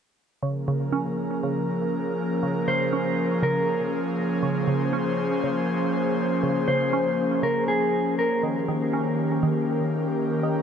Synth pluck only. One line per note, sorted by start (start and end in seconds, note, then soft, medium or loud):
0.43 0.67 C#3 medium
0.68 1.42 C#3 medium
0.92 2.43 C#4 medium
1.43 2.42 C#3 medium
2.43 2.66 C#3 medium
2.68 3.41 C#3 medium
2.93 4.43 C#4 medium
3.43 4.41 C#3 medium
4.43 4.66 C#3 medium
4.67 5.42 C#3 medium
4.93 6.43 C#4 medium
5.44 6.42 C#3 medium
6.43 6.67 C#3 medium
6.68 7.42 C#3 medium
6.93 8.43 C#4 medium
7.43 8.43 C#3 medium
8.43 8.67 D#3 medium
8.68 9.42 D#3 medium
8.93 10.43 C#4 medium
9.43 10.42 D#3 medium
10.43 10.62 D#3 medium